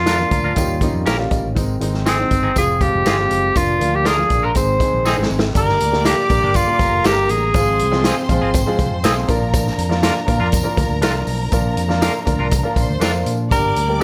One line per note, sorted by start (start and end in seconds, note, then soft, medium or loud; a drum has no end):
0.00 0.23 F2 medium
0.00 0.54 F3 medium
0.00 0.56 A#3 medium
0.00 0.56 D4 medium
0.00 1.28 F4 loud
0.06 0.16 D4 medium
0.06 0.17 F4 medium
0.06 0.17 A#4 medium
0.06 snare loud
0.06 closed hi-hat medium
0.06 tambourine medium
0.19 0.46 F3 medium
0.19 0.46 A#3 medium
0.19 0.46 D4 medium
0.19 0.47 F4 medium
0.31 0.53 D2 medium
0.31 0.55 A#5 medium
0.31 kick medium
0.31 closed hi-hat medium
0.31 tambourine medium
0.44 0.52 D4 medium
0.44 0.52 F4 medium
0.44 0.52 A#4 medium
0.55 0.88 D#2 medium
0.55 2.54 D#3 medium
0.55 0.74 G3 medium
0.55 1.56 G3 medium
0.55 0.74 A#3 medium
0.55 0.74 C#4 medium
0.55 1.56 C#4 medium
0.55 0.75 D#4 medium
0.55 1.03 G5 medium
0.55 kick medium
0.55 closed hi-hat medium
0.55 tambourine loud
0.81 1.08 G3 medium
0.81 1.08 A#3 medium
0.81 1.08 C#4 medium
0.81 1.09 D#4 loud
0.81 kick medium
0.81 closed hi-hat medium
0.81 tambourine medium
0.94 1.04 F2 medium
1.06 1.27 A#1 loud
1.06 1.16 C#4 medium
1.06 1.16 G4 medium
1.06 1.16 A#4 medium
1.06 1.30 F5 medium
1.06 snare loud
1.06 closed hi-hat medium
1.06 tambourine medium
1.18 1.45 G3 medium
1.18 1.45 A#3 medium
1.18 1.45 C#4 medium
1.18 1.46 F4 medium
1.31 1.52 A1 medium
1.31 1.54 D#5 medium
1.31 kick medium
1.31 closed hi-hat medium
1.31 tambourine soft
1.55 1.77 G#1 loud
1.55 1.74 D#3 medium
1.55 1.74 G#3 medium
1.55 3.54 G#3 medium
1.55 3.54 C4 medium
1.55 1.74 C4 medium
1.55 1.75 D#4 loud
1.55 kick loud
1.55 closed hi-hat medium
1.55 tambourine medium
1.80 2.23 G#1 medium
1.80 2.07 D#3 medium
1.80 2.08 G#3 medium
1.80 2.08 C4 medium
1.80 2.08 D#4 loud
1.80 closed hi-hat medium
1.80 tambourine soft
1.94 snare soft
2.06 2.16 C4 medium
2.06 2.53 C4 medium
2.06 2.16 D#4 medium
2.06 2.16 G#4 loud
2.06 snare loud
2.06 closed hi-hat loud
2.06 tambourine medium
2.19 2.45 D#3 medium
2.19 2.45 G#3 medium
2.19 2.46 C4 medium
2.19 2.46 D#4 medium
2.31 2.52 G1 medium
2.31 kick medium
2.31 closed hi-hat medium
2.31 tambourine medium
2.43 2.52 C4 soft
2.43 2.51 D#4 medium
2.43 2.51 G#4 medium
2.56 2.88 F1 loud
2.56 2.74 F3 medium
2.56 3.54 F3 medium
2.56 2.74 G#3 medium
2.56 2.74 C4 medium
2.56 2.75 F4 medium
2.56 2.83 G#4 medium
2.56 kick medium
2.56 closed hi-hat medium
2.56 tambourine loud
2.81 3.07 F3 medium
2.81 3.08 G#3 medium
2.81 3.08 C4 medium
2.81 3.08 F4 medium
2.81 3.58 G4 loud
2.81 kick medium
2.81 closed hi-hat medium
2.81 tambourine medium
2.94 3.04 F1 medium
3.06 3.27 G1 medium
3.06 3.15 C4 medium
3.06 3.16 F4 medium
3.06 3.16 G#4 medium
3.06 snare loud
3.06 closed hi-hat medium
3.06 tambourine medium
3.18 3.45 F3 medium
3.18 3.45 G#3 medium
3.18 3.45 C4 medium
3.18 3.46 F4 medium
3.31 3.52 F#1 medium
3.31 closed hi-hat medium
3.31 tambourine soft
3.55 3.77 F1 medium
3.55 3.73 F3 medium
3.55 4.54 F3 medium
3.55 4.54 A#3 medium
3.55 3.73 A#3 medium
3.55 4.54 D4 medium
3.55 3.74 D4 medium
3.55 3.74 F4 medium
3.55 3.97 F4 medium
3.55 kick loud
3.55 closed hi-hat medium
3.55 tambourine medium
3.79 4.23 D2 medium
3.79 4.07 F3 medium
3.79 4.07 A#3 medium
3.79 4.07 D4 medium
3.79 4.08 F4 medium
3.79 closed hi-hat medium
3.79 tambourine soft
3.95 4.09 G4 medium
4.05 4.15 D4 medium
4.05 4.15 F4 medium
4.05 4.46 G#4 loud
4.05 4.16 A#4 loud
4.05 snare loud
4.05 closed hi-hat loud
4.05 tambourine medium
4.18 4.44 F3 medium
4.18 4.44 A#3 medium
4.18 4.45 D4 medium
4.18 4.45 F4 medium
4.30 4.51 A#1 medium
4.30 kick medium
4.30 closed hi-hat medium
4.30 tambourine medium
4.43 4.51 D4 medium
4.43 4.51 F4 medium
4.43 4.50 A#4 medium
4.43 4.56 A#4 loud
4.54 4.76 G#1 loud
4.54 5.54 D#3 medium
4.54 4.73 G#3 medium
4.54 5.54 G#3 medium
4.54 5.54 C4 medium
4.54 4.73 C4 medium
4.54 4.73 D#4 medium
4.54 4.74 G#4 medium
4.54 5.27 C5 loud
4.54 kick medium
4.54 closed hi-hat medium
4.54 tambourine loud
4.79 5.06 G#3 medium
4.79 5.07 C4 medium
4.79 5.07 D#4 medium
4.79 5.07 G#4 medium
4.79 muted fingered electric bass stroke soft
4.79 kick medium
4.79 closed hi-hat medium
4.79 tambourine medium
4.93 5.14 A#1 medium
5.05 5.15 C4 medium
5.05 5.15 D#4 loud
5.05 5.16 G#4 loud
5.05 snare medium
5.05 tambourine loud
5.16 5.28 G#1 medium
5.16 5.43 G#3 medium
5.16 5.44 C4 medium
5.16 5.44 D#4 medium
5.16 5.44 G#4 loud
5.22 snare medium
5.30 5.51 G#1 medium
5.30 tambourine soft
5.39 snare loud
5.54 5.76 G1 loud
5.54 7.53 D3 medium
5.54 5.81 G3 medium
5.54 7.53 G3 medium
5.54 5.81 A#3 medium
5.54 7.53 A#3 medium
5.54 5.81 D4 medium
5.54 5.82 G4 medium
5.54 5.82 A#4 medium
5.54 6.08 A#4 loud
5.54 6.78 D5 medium
5.54 6.78 D6 medium
5.54 kick loud
5.54 closed hi-hat medium
5.54 tambourine medium
5.69 snare soft
5.80 6.12 D2 medium
5.80 closed hi-hat medium
5.80 tambourine soft
5.91 6.18 G3 medium
5.91 6.19 A#3 medium
5.91 6.19 D4 medium
5.91 6.19 G4 medium
5.91 6.19 A#4 medium
5.91 snare soft
6.05 6.15 A#3 medium
6.05 6.15 D4 medium
6.05 6.57 G4 loud
6.05 6.15 G4 loud
6.05 snare loud
6.05 closed hi-hat loud
6.05 tambourine medium
6.29 6.44 A#1 medium
6.29 6.56 G3 medium
6.29 6.56 A#3 medium
6.29 6.56 D4 medium
6.29 6.57 G4 medium
6.29 6.57 A#4 medium
6.29 kick medium
6.29 closed hi-hat medium
6.29 tambourine medium
6.42 6.63 G1 medium
6.42 6.51 A#3 medium
6.42 6.51 D4 medium
6.42 6.50 G4 medium
6.54 7.08 F4 medium
6.54 kick loud
6.54 closed hi-hat medium
6.54 tambourine loud
6.67 6.94 G3 medium
6.67 6.94 A#3 medium
6.67 6.94 D4 medium
6.67 6.94 G4 medium
6.67 6.95 A#4 medium
6.79 6.90 G1 medium
6.79 7.53 A#4 medium
6.79 7.53 A#5 medium
6.79 kick medium
6.79 closed hi-hat medium
6.79 tambourine medium
6.92 7.03 F1 medium
7.03 7.26 G1 medium
7.03 7.39 G3 medium
7.03 7.40 A#3 medium
7.03 7.14 A#3 medium
7.03 7.40 D4 medium
7.03 7.15 D4 medium
7.03 7.40 G4 medium
7.03 7.32 G4 loud
7.03 7.15 G4 medium
7.03 7.11 G#4 medium
7.03 snare loud
7.03 closed hi-hat medium
7.03 tambourine loud
7.11 7.43 A#4 medium
7.29 7.50 A1 medium
7.29 8.30 G#4 medium
7.29 closed hi-hat medium
7.29 tambourine medium
7.54 7.81 G#1 loud
7.54 7.81 F3 medium
7.54 13.47 F3 medium
7.54 9.27 G#3 medium
7.54 7.81 G#3 medium
7.54 9.27 C4 medium
7.54 7.81 C4 medium
7.54 7.81 F4 medium
7.54 7.82 G#4 medium
7.54 9.26 C5 medium
7.54 9.26 C6 medium
7.54 kick loud
7.54 closed hi-hat medium
7.54 tambourine medium
7.79 8.11 C2 medium
7.79 closed hi-hat medium
7.79 tambourine soft
7.91 8.18 F3 medium
7.91 8.18 G#3 medium
7.91 8.18 C4 medium
7.91 8.19 F4 medium
7.91 8.19 G#4 loud
7.91 snare soft
8.04 8.14 C4 medium
8.04 8.14 F4 medium
8.04 8.15 G#4 loud
8.04 snare loud
8.04 closed hi-hat loud
8.04 tambourine medium
8.29 8.39 A#1 medium
8.29 8.55 F3 medium
8.29 8.55 G#3 medium
8.29 8.56 C4 medium
8.29 8.56 F4 medium
8.29 8.56 G#4 medium
8.29 kick loud
8.29 closed hi-hat medium
8.29 tambourine medium
8.42 8.62 G#1 medium
8.42 8.50 C4 soft
8.42 8.49 F4 medium
8.42 8.49 G#4 medium
8.54 kick loud
8.54 closed hi-hat medium
8.54 tambourine loud
8.66 8.93 F3 medium
8.66 8.93 G#3 medium
8.66 8.93 C4 medium
8.66 8.93 F4 medium
8.66 8.94 G#4 loud
8.79 8.89 C2 medium
8.79 kick medium
8.79 closed hi-hat medium
8.79 tambourine medium
8.91 9.05 F2 medium
9.04 9.24 B1 loud
9.04 9.26 F3 medium
9.04 9.29 G#3 medium
9.04 9.13 C4 medium
9.04 9.29 C4 medium
9.04 9.14 F4 medium
9.04 9.28 F4 medium
9.04 9.14 G#4 loud
9.04 9.30 G#4 medium
9.04 snare loud
9.04 closed hi-hat medium
9.04 tambourine loud
9.28 9.70 A#1 loud
9.28 9.78 F3 medium
9.28 13.47 A#3 medium
9.28 9.78 A#3 medium
9.28 14.03 D4 medium
9.28 9.78 D4 medium
9.28 9.79 F4 medium
9.28 12.73 A#4 medium
9.28 9.79 A#4 loud
9.28 12.73 A#5 loud
9.28 kick medium
9.28 closed hi-hat medium
9.28 tambourine medium
9.53 kick loud
9.53 closed hi-hat medium
9.53 tambourine medium
9.67 snare soft
9.78 10.09 F2 medium
9.78 closed hi-hat medium
9.78 tambourine soft
9.89 10.16 F3 medium
9.89 10.17 A#3 medium
9.89 10.17 D4 medium
9.89 10.17 F4 medium
9.89 10.17 A#4 loud
9.89 snare soft
10.03 10.13 D4 medium
10.03 10.13 F4 medium
10.03 10.13 A#4 medium
10.03 snare loud
10.03 closed hi-hat loud
10.03 tambourine medium
10.27 10.39 A#2 medium
10.27 10.54 F3 medium
10.27 10.54 A#3 medium
10.27 10.54 D4 medium
10.27 10.54 F4 medium
10.27 10.55 A#4 loud
10.27 kick medium
10.27 closed hi-hat medium
10.27 tambourine medium
10.40 10.61 F2 loud
10.40 10.48 D4 medium
10.40 10.48 F4 medium
10.40 10.48 A#4 medium
10.52 kick medium
10.52 closed hi-hat medium
10.52 tambourine loud
10.64 10.91 F3 medium
10.64 10.91 A#3 medium
10.64 10.91 D4 medium
10.64 10.92 F4 medium
10.64 10.92 A#4 loud
10.77 10.88 D2 medium
10.77 kick medium
10.77 closed hi-hat medium
10.77 tambourine medium
10.89 11.00 D2 medium
11.01 11.23 C2 loud
11.01 11.37 F3 medium
11.01 11.37 A#3 medium
11.01 11.12 D4 medium
11.01 11.38 D4 medium
11.01 11.38 F4 medium
11.01 11.12 F4 medium
11.01 11.12 A#4 loud
11.01 11.38 A#4 medium
11.01 snare loud
11.01 closed hi-hat medium
11.01 tambourine loud
11.27 11.48 B1 loud
11.27 open hi-hat medium
11.27 tambourine medium
11.52 11.73 A#1 loud
11.52 11.78 F3 medium
11.52 11.79 A#3 medium
11.52 11.79 D4 medium
11.52 11.79 F4 medium
11.52 11.79 A#4 loud
11.52 kick loud
11.52 closed hi-hat medium
11.52 tambourine medium
11.77 12.08 F2 medium
11.77 closed hi-hat medium
11.77 tambourine soft
11.88 12.15 F3 medium
11.88 12.16 A#3 medium
11.88 12.16 D4 medium
11.88 12.16 F4 medium
11.88 12.16 A#4 loud
11.88 snare soft
12.02 12.11 D4 medium
12.02 12.12 F4 medium
12.02 12.12 A#4 medium
12.02 snare loud
12.02 closed hi-hat loud
12.02 tambourine medium
12.25 12.37 D2 medium
12.25 12.52 F3 medium
12.25 12.53 A#3 medium
12.25 12.53 D4 medium
12.25 12.53 F4 medium
12.25 12.53 A#4 loud
12.25 kick loud
12.25 closed hi-hat medium
12.25 tambourine medium
12.39 12.60 C2 medium
12.39 12.47 D4 soft
12.39 12.47 F4 medium
12.39 12.47 A#4 medium
12.51 kick loud
12.51 closed hi-hat loud
12.51 tambourine loud
12.63 12.90 F3 medium
12.63 12.90 A#3 medium
12.63 12.91 D4 medium
12.63 12.91 F4 medium
12.63 12.91 A#4 medium
12.76 12.87 A#1 medium
12.76 13.25 C5 medium
12.76 13.25 C6 medium
12.76 kick medium
12.76 closed hi-hat medium
12.76 tambourine medium
12.89 13.00 D2 medium
13.00 13.22 F2 medium
13.00 13.36 F3 medium
13.00 13.36 A#3 medium
13.00 13.36 D4 medium
13.00 13.11 D4 medium
13.00 13.36 F4 medium
13.00 13.11 F4 medium
13.00 13.37 A#4 medium
13.00 13.12 A#4 loud
13.00 snare loud
13.00 closed hi-hat medium
13.00 tambourine medium
13.26 13.53 A#2 medium
13.26 closed hi-hat medium
13.26 tambourine medium
13.51 13.72 G1 loud
13.51 13.77 G3 medium
13.51 14.03 G3 medium
13.51 13.77 A#3 medium
13.51 14.03 A#3 medium
13.51 13.78 D4 medium
13.51 13.78 G4 medium
13.51 14.03 A#4 loud
13.51 13.78 A#4 medium
13.51 14.03 D5 medium
13.51 14.03 D6 medium
13.51 kick loud
13.51 closed hi-hat medium
13.51 tambourine medium
13.76 14.03 D2 medium
13.76 closed hi-hat medium
13.76 tambourine soft
13.88 14.03 G3 medium
13.88 14.03 A#3 medium
13.88 14.03 D4 medium
13.88 14.03 G4 medium
13.88 14.03 A#4 medium